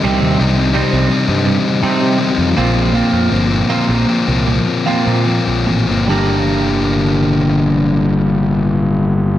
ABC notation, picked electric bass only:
X:1
M:4/4
L:1/16
Q:1/4=77
K:Gm
V:1 name="Picked electric bass" clef=bass
C,, E,, C,,3 C,, z G,,2 z C,3 F,, B,,,2- | B,,, F,, G,,,2 z B,,, z C,,2 z2 B,,2 B,,, A,,, G,,, | G,,,16 |]